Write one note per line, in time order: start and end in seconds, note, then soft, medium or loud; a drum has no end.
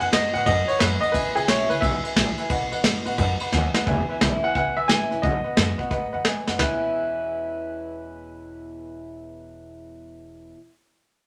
0.00 0.12 F#2 medium
0.00 0.44 B2 medium
0.00 0.07 B4 medium
0.00 0.08 D#5 medium
0.00 0.05 F#5 loud
0.00 0.08 F#5 medium
0.00 ride medium
0.11 0.34 F#2 loud
0.11 0.33 D#3 medium
0.11 0.33 G#3 medium
0.11 0.33 B3 loud
0.11 0.31 F#4 loud
0.11 0.25 B4 medium
0.11 0.33 D#5 loud
0.11 0.26 F#5 medium
0.11 snare loud
0.11 ride medium
0.32 0.46 A2 medium
0.32 0.46 B3 medium
0.32 0.45 F#4 medium
0.32 0.41 B4 medium
0.32 0.42 D#5 medium
0.32 0.46 F#5 loud
0.32 0.42 F#5 medium
0.32 ride medium
0.45 0.68 F#2 loud
0.45 0.78 G#2 medium
0.45 0.59 B4 loud
0.45 0.69 D#5 loud
0.45 0.60 D#5 medium
0.45 0.60 F#5 loud
0.45 kick loud
0.45 ride medium
0.68 0.75 B4 medium
0.68 0.80 C#5 loud
0.68 0.76 D#5 medium
0.68 0.76 F#5 medium
0.68 muted upright bass stroke medium
0.68 ride medium
0.79 1.13 F#2 medium
0.79 1.02 F#2 medium
0.79 1.00 B4 medium
0.79 0.93 B4 medium
0.79 0.94 D#5 medium
0.79 0.94 F#5 medium
0.79 snare loud
0.79 ride medium
1.01 1.09 B4 medium
1.01 1.14 D#5 loud
1.01 1.09 D#5 medium
1.01 1.09 F#5 medium
1.01 muted upright bass stroke medium
1.01 ride medium
1.12 1.36 E1 medium
1.12 1.80 E2 medium
1.12 1.36 B4 loud
1.12 1.27 B4 loud
1.12 1.27 E5 medium
1.12 1.27 G#5 loud
1.12 kick loud
1.12 ride medium
1.35 1.48 B1 medium
1.35 1.48 G#4 medium
1.35 1.43 B4 medium
1.35 1.43 E5 medium
1.35 1.44 G#5 medium
1.35 ride medium
1.47 1.70 B1 medium
1.47 1.69 E3 medium
1.47 1.69 G#3 medium
1.47 1.69 C#4 loud
1.47 1.67 E4 medium
1.47 1.61 B4 medium
1.47 1.71 C#5 medium
1.47 1.61 E5 medium
1.47 1.61 G#5 medium
1.47 snare loud
1.47 ride medium
1.69 1.82 C#2 medium
1.69 1.82 C#4 medium
1.69 1.81 E4 medium
1.69 1.77 B4 medium
1.69 1.82 B4 medium
1.69 1.77 E5 medium
1.69 1.77 G#5 medium
1.69 ride medium
1.81 2.03 B1 medium
1.81 2.15 G#2 medium
1.81 1.95 B4 loud
1.81 2.34 E5 medium
1.81 1.95 E5 medium
1.81 1.96 G#5 loud
1.81 kick loud
1.81 ride medium
2.04 2.11 B4 medium
2.04 2.12 E5 medium
2.04 2.12 G#5 medium
2.04 muted upright bass stroke medium
2.04 ride medium
2.15 2.37 A#1 medium
2.15 2.49 A2 medium
2.15 2.29 B4 medium
2.15 2.30 E5 medium
2.15 2.30 G#5 medium
2.15 snare loud
2.15 ride medium
2.38 2.45 B4 medium
2.38 2.46 E5 medium
2.38 2.46 G#5 loud
2.38 ride medium
2.49 2.71 B1 loud
2.49 3.16 B2 medium
2.49 2.63 B4 loud
2.49 2.64 D#5 loud
2.49 2.64 F#5 loud
2.49 kick loud
2.49 ride medium
2.72 2.84 F#2 loud
2.72 2.79 B4 medium
2.72 2.80 D#5 medium
2.72 2.80 F#5 loud
2.72 ride medium
2.83 3.05 F#2 medium
2.83 3.05 D#3 medium
2.83 3.05 G#3 medium
2.83 3.05 B3 loud
2.83 3.04 F#4 medium
2.83 2.97 B4 medium
2.83 2.98 D#5 medium
2.83 snare loud
2.83 ride medium
3.05 3.18 A2 medium
3.05 3.18 B3 medium
3.05 3.17 F#4 medium
3.05 3.13 B4 loud
3.05 3.14 D#5 medium
3.05 3.14 F#5 loud
3.05 ride medium
3.18 3.40 F#2 medium
3.18 3.52 G#2 medium
3.18 3.31 B4 loud
3.18 3.32 D#5 loud
3.18 3.32 F#5 loud
3.18 kick loud
3.18 ride medium
3.40 3.48 B4 medium
3.40 3.48 D#5 medium
3.40 3.49 F#5 loud
3.40 3.52 B5 medium
3.40 muted upright bass stroke medium
3.40 ride medium
3.52 3.74 D#2 medium
3.52 3.86 F#2 medium
3.52 3.66 B4 medium
3.52 3.66 D#5 medium
3.52 3.66 F#5 loud
3.52 3.73 G#5 medium
3.52 snare medium
3.74 3.82 B4 medium
3.74 3.82 D#5 medium
3.74 3.82 F#5 medium
3.74 muted upright bass stroke medium
3.74 snare medium
3.86 4.05 E1 medium
3.86 4.53 E2 medium
3.86 4.00 B4 loud
3.86 4.00 E5 loud
3.86 4.00 G#5 loud
3.86 kick loud
3.86 closed hi-hat medium
4.09 4.16 B4 medium
4.09 4.16 E5 medium
4.09 4.17 G#5 loud
4.09 muted upright bass stroke medium
4.21 4.39 B1 medium
4.21 4.42 E3 medium
4.21 4.43 G#3 medium
4.21 4.43 C#4 medium
4.21 4.43 E4 loud
4.21 4.34 B4 medium
4.21 4.35 E5 medium
4.21 4.35 B5 loud
4.21 snare loud
4.21 closed hi-hat medium
4.43 4.56 C#4 soft
4.43 4.55 E4 medium
4.43 4.50 B4 medium
4.43 4.51 E5 medium
4.43 4.54 F#5 loud
4.43 4.51 G#5 medium
4.43 muted upright bass stroke medium
4.55 4.74 C#2 loud
4.55 5.22 B2 medium
4.55 4.68 B4 loud
4.55 4.69 E5 medium
4.55 4.78 F#5 loud
4.55 4.69 G#5 loud
4.55 kick loud
4.55 closed hi-hat medium
4.77 4.87 B1 medium
4.77 4.84 B4 medium
4.77 4.89 E5 medium
4.77 4.85 E5 medium
4.77 4.85 G#5 medium
4.88 5.07 A1 medium
4.88 5.10 E3 medium
4.88 5.11 G#3 loud
4.88 5.11 C#4 loud
4.88 5.10 E4 loud
4.88 5.02 B4 medium
4.88 5.03 E5 medium
4.88 5.24 G#5 loud
4.88 5.03 G#5 medium
4.88 snare loud
5.11 5.21 A#1 medium
5.11 5.24 C#4 medium
5.11 5.23 E4 medium
5.11 5.18 B4 medium
5.11 5.19 E5 medium
5.11 5.19 G#5 medium
5.11 closed hi-hat medium
5.22 5.42 B1 loud
5.22 5.89 B2 loud
5.22 5.36 B4 medium
5.22 6.21 D#5 medium
5.22 5.37 D#5 medium
5.22 5.37 F#5 loud
5.22 kick loud
5.22 closed hi-hat medium
5.44 5.52 B4 medium
5.44 5.52 D#5 medium
5.44 5.53 F#5 medium
5.44 muted upright bass stroke medium
5.56 5.76 F#2 medium
5.56 5.78 D#3 medium
5.56 5.79 G#3 medium
5.56 5.79 B3 medium
5.56 5.78 F#4 loud
5.56 5.70 B4 medium
5.56 5.71 D#5 medium
5.56 5.71 F#5 medium
5.56 snare loud
5.56 closed hi-hat medium
5.78 5.92 B3 soft
5.78 5.91 F#4 medium
5.78 5.86 B4 medium
5.78 5.87 D#5 medium
5.78 5.87 F#5 medium
5.78 kick medium
5.91 6.24 G#2 medium
5.91 6.10 A2 medium
5.91 6.04 B4 loud
5.91 6.05 D#5 loud
5.91 6.05 F#5 loud
5.91 kick loud
5.91 closed hi-hat medium
6.13 6.24 F#2 medium
6.13 6.20 B4 medium
6.13 6.21 D#5 medium
6.13 6.21 F#5 loud
6.25 6.44 E2 medium
6.25 6.58 F#2 medium
6.25 6.39 B4 medium
6.25 6.39 D#5 medium
6.25 6.39 G#5 loud
6.25 snare loud
6.25 closed hi-hat medium
6.47 6.58 F#2 medium
6.47 6.55 B4 medium
6.47 6.55 D#5 medium
6.47 6.56 F#5 loud
6.47 snare medium
6.57 10.52 E1 medium
6.57 10.55 E2 medium
6.57 10.56 B2 medium
6.57 10.56 E3 medium
6.57 10.50 B4 medium
6.57 10.52 B4 medium
6.57 10.52 E5 medium
6.57 snare loud
6.57 floor tom loud
6.61 10.58 G#3 medium
6.61 10.58 C#4 medium
6.61 10.58 E4 medium
6.61 10.55 G#5 medium